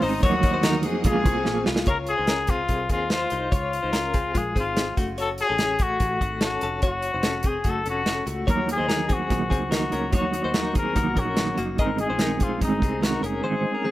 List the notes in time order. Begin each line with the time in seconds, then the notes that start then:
Already playing: C5 D#5 G#5 D#6
0.02 G#1 G#3 C4 D#4 C5, open hi-hat
0.23 D#2 D#3 F#3 A#3 D#4 F#4 A#4 C#5 D#5 F#5, kick, closed hi-hat
0.43 D#2 F#3 A#3 D#4, kick, closed hi-hat
0.54 D#4 C5
0.63 D#3 F#3 A#3 D#4 A#4, snare, closed hi-hat
0.83 F2 F#3 A#3 C4 D#4 G#4, closed hi-hat
1.04 C#2 C#3 F3 G#3 A#3 F4 G#4 F5 G#5 C#6, kick, closed hi-hat
1.25 C2 A#3 C4 F4 G#4, kick, closed hi-hat
1.44 A#1 F3 A#3 F4 G#4, snare
1.66 C2 G#3 A#3 F4 G#4, snare
1.76 snare
1.86 C#2 F4 A#4 C#5, kick, closed hi-hat
2.07 G#4, closed hi-hat
2.18 C#2 D#4 C5
2.27 C#4 A#4, snare, closed hi-hat
2.47 C4 F4 G#4, kick, closed hi-hat
2.69 C2, kick, closed hi-hat
2.89 D#2 C4 F4 G#4, kick, closed hi-hat
3.10 F4 C5, snare, closed hi-hat
3.30 C2 D#4 C5, closed hi-hat
3.52 C#2 F4 C#5, kick, closed hi-hat
3.73 closed hi-hat
3.83 C#2 D#4 C5
3.93 C#4 A#4, snare, closed hi-hat
4.14 C4 G#4, kick, closed hi-hat
4.34 A#1 G#3 F4 G#4, kick, closed hi-hat
4.56 G#1 C4 F4 G#4, kick, closed hi-hat
4.77 snare, closed hi-hat
4.97 F#1 A3 F#4, kick, closed hi-hat
5.18 F#4 A4 C#5, closed hi-hat
5.38 G#4, closed hi-hat
5.49 A1 C#4 A4
5.58 C#4 G#4, snare, closed hi-hat
5.79 A3 F#4, kick, closed hi-hat
6.00 A1, kick, closed hi-hat
6.21 G#1 A3 F#4, kick, closed hi-hat
6.41 C#4 A4, snare, closed hi-hat
6.45 F#4
6.61 F1 C#4 A4, closed hi-hat
6.82 F#1 F#4 C#5, kick, closed hi-hat
6.87 F#4
7.02 closed hi-hat
7.14 F1 D#4 C5
7.23 C#4 A4, snare, closed hi-hat
7.43 C4 G#4, kick, closed hi-hat
7.48 G#4
7.64 F#1 A3 F#4, kick, closed hi-hat
7.70 A4
7.86 F1 C#4 A4, closed hi-hat
7.90 F#4
8.06 snare, closed hi-hat
8.26 C#2 A3 F#4, closed hi-hat
8.47 D#2 D#3 F#3 A#3 D#4 F#4 A#4 C#5, kick, closed hi-hat
8.67 F#3 A#3 D#4, closed hi-hat
8.71 G#4
8.78 D#2 D#4 C5
8.88 D#3 F#3 A#3 D#4 A#4, snare, closed hi-hat
9.09 F#3 A#3 C4 D#4 G#4, kick, closed hi-hat
9.13 F#4
9.29 A#1 D#3 F#3 A#3 D#4, kick, snare, closed hi-hat
9.49 C#2 F#3 A#3 C4 D#4 G#4, kick, closed hi-hat
9.69 D#3 F#3 A#3 D#4 A#4, snare, closed hi-hat
9.76 F#4
9.91 C#2 F#3 A#3 C#4 D#4 A#4, closed hi-hat
10.11 D#2 D#3 F#3 A#3 D#4 F#4 C#5, kick, closed hi-hat
10.16 F#4
10.32 F#3 A#3 D#4, closed hi-hat
10.44 D#2 D#4 C5
10.53 D#3 F#3 A#3 D#4 A#4, snare, closed hi-hat
10.74 F#3 A#3 C4 D#4 G#4 A#4, kick, closed hi-hat
10.95 C2 D#3 F#3 A#3 D#4 F#4, kick, snare, closed hi-hat
11.15 A#1 F#3 A#3 C#4 D#4 A#4, kick, closed hi-hat
11.19 F#4
11.37 D#3 F#3 A#3 D#4, snare, closed hi-hat
11.58 F#1 F#3 A#3 D#4 F#4, closed hi-hat
11.78 G#1 G#2 D#3 G#3 C4 D#4 G#4 A#4 D#5, kick, closed hi-hat
11.98 C4 D#4 G#4, closed hi-hat
12.03 G#3
12.10 A#1 D#4 C5
12.19 D#3 G#3 C4 D#4 A#4, snare, closed hi-hat
12.40 G#3 C4 D#4 F4 G#4, kick, closed hi-hat
12.61 G#1 G#2 D#3 G#3 C4 D#4, kick, closed hi-hat
12.82 C2 G#3 C4 D#4 G#4, kick, closed hi-hat
13.01 D#3 G#3 C4 D#4 F#4 A#4, snare, closed hi-hat
13.23 F#1 C4 C#4 D#4 G#4 A#4, closed hi-hat
13.27 G#3
13.43 G#2 D#3 G#3 C4 D#4 C5
13.65 G#3 C4 D#4
13.74 C#4 A#4
13.84 D#3 G#3 C4 D#4 G#4